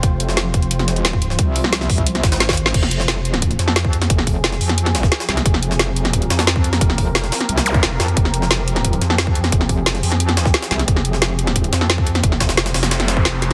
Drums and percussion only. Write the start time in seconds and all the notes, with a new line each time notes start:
0.03 kick, closed hi-hat
0.20 closed hi-hat
0.29 snare
0.37 snare, closed hi-hat
0.54 kick, closed hi-hat
0.62 closed hi-hat
0.71 closed hi-hat
0.79 snare, closed hi-hat
0.88 snare, closed hi-hat
0.96 closed hi-hat
1.05 snare, closed hi-hat
1.13 kick
1.22 closed hi-hat
1.30 snare
1.39 kick, closed hi-hat
1.56 closed hi-hat, open hi-hat
1.64 snare
1.73 snare, closed hi-hat
1.81 snare
1.90 kick, closed hi-hat, open hi-hat
1.98 kick, closed hi-hat
2.06 closed hi-hat
2.15 snare, closed hi-hat
2.23 kick, snare, closed hi-hat
2.32 snare, closed hi-hat
2.40 snare, closed hi-hat
2.49 kick, snare, closed hi-hat
2.53 snare, closed hi-hat
2.57 closed hi-hat
2.66 snare
2.74 kick, closed hi-hat, crash
2.83 snare
2.91 closed hi-hat
3.00 snare
3.08 snare, closed hi-hat
3.25 closed hi-hat
3.34 snare, closed hi-hat
3.42 kick, closed hi-hat
3.51 closed hi-hat
3.59 snare, closed hi-hat
3.68 snare
3.76 snare, closed hi-hat
3.85 kick
3.93 closed hi-hat
4.02 snare, closed hi-hat
4.10 kick, closed hi-hat
4.18 snare
4.27 kick, closed hi-hat, open hi-hat
4.44 snare, closed hi-hat
4.52 snare, closed hi-hat
4.61 closed hi-hat, open hi-hat
4.69 snare, closed hi-hat
4.78 closed hi-hat
4.86 snare, closed hi-hat
4.95 snare, closed hi-hat
5.03 kick, snare
5.12 snare, closed hi-hat
5.20 snare, closed hi-hat
5.29 snare, closed hi-hat
5.37 snare, closed hi-hat
5.46 kick, closed hi-hat
5.54 snare
5.63 closed hi-hat
5.71 snare
5.79 snare, closed hi-hat
5.96 closed hi-hat
6.05 snare, closed hi-hat
6.13 kick, closed hi-hat
6.22 closed hi-hat
6.30 snare, closed hi-hat
6.39 snare, closed hi-hat
6.47 snare, closed hi-hat
6.56 kick
6.64 closed hi-hat
6.73 snare, closed hi-hat
6.81 kick, closed hi-hat
6.90 snare
6.98 kick, closed hi-hat, open hi-hat
7.15 snare, closed hi-hat
7.24 snare, closed hi-hat
7.32 snare, closed hi-hat, open hi-hat
7.41 snare, closed hi-hat
7.49 closed hi-hat
7.57 snare, closed hi-hat
7.66 closed hi-hat
7.74 kick, closed hi-hat
7.83 snare, closed hi-hat
8.00 snare, closed hi-hat
8.08 closed hi-hat
8.17 kick, closed hi-hat
8.25 snare
8.34 closed hi-hat
8.42 snare
8.51 snare, closed hi-hat
8.68 closed hi-hat
8.76 snare, closed hi-hat
8.85 kick, closed hi-hat
8.93 closed hi-hat
9.01 snare, closed hi-hat
9.10 snare
9.18 snare, closed hi-hat
9.27 kick
9.35 closed hi-hat
9.44 snare, closed hi-hat
9.52 kick, closed hi-hat
9.61 snare
9.69 kick, closed hi-hat, open hi-hat
9.86 snare, closed hi-hat
9.95 snare, closed hi-hat
10.03 closed hi-hat, open hi-hat
10.12 snare, closed hi-hat
10.20 closed hi-hat
10.29 snare, closed hi-hat
10.37 snare, closed hi-hat
10.46 kick, snare
10.54 snare, closed hi-hat
10.62 snare, closed hi-hat
10.71 snare, closed hi-hat
10.79 snare, closed hi-hat
10.88 kick, closed hi-hat
10.96 snare
11.05 closed hi-hat
11.13 snare
11.22 snare, closed hi-hat
11.39 closed hi-hat
11.47 snare, closed hi-hat
11.56 kick, closed hi-hat
11.64 closed hi-hat
11.73 snare, closed hi-hat
11.81 snare
11.90 snare, closed hi-hat
11.98 kick
12.07 closed hi-hat
12.15 snare, closed hi-hat
12.23 kick, closed hi-hat
12.32 snare
12.40 kick, snare, closed hi-hat
12.49 snare, closed hi-hat
12.57 snare, closed hi-hat
12.66 snare, closed hi-hat
12.74 snare, closed hi-hat, open hi-hat
12.83 snare, closed hi-hat
12.91 snare, closed hi-hat
13.00 snare, closed hi-hat
13.08 snare, closed hi-hat
13.17 kick
13.25 snare, closed hi-hat
13.42 snare, closed hi-hat